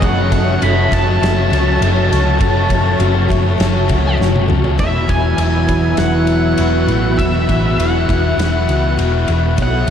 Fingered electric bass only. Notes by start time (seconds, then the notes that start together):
0.02 F#1
0.62 F#1
0.92 F#1
1.22 F#1
1.52 C#2
1.81 F#1
2.12 C#2
2.41 F#1
2.99 F#1
3.31 F#1
3.60 F#1
3.90 C#2
4.21 F#1
4.49 C#2
4.80 E1
5.09 E1
5.38 E1
5.98 E1
6.59 E1
6.87 A1
7.49 A1
7.78 E1
8.09 E1
8.37 E1
8.69 C#2
8.98 E1
9.28 E1
9.58 B1